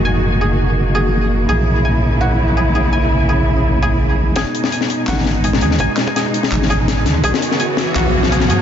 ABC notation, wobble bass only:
X:1
M:4/4
L:1/8
Q:"Swing 16ths" 1/4=167
K:G#m
V:1 name="Wobble bass" clef=bass
F,,,8 | A,,,8- | A,,,8 | G,,, z3 G,,,3 D,, |
G,,, z3 G,,,3 D,, | B,,, z3 B,,,3 G,, |]